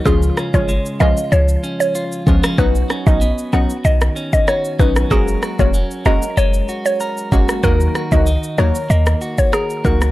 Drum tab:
SH |xxxxxxxxxxxxxxxx|xxxxxxxxxxxxxxxx|xxxxxxxxxxxxxxxx|xxxxxxxxxxxxxxxx|
SD |--r---r--------r|--r---r--r--r--r|--r---r--------r|--r---r--r--r--r|
BD |o--o----------o-|o--o-------o--o-|o--o----------o-|o--o-------o--o-|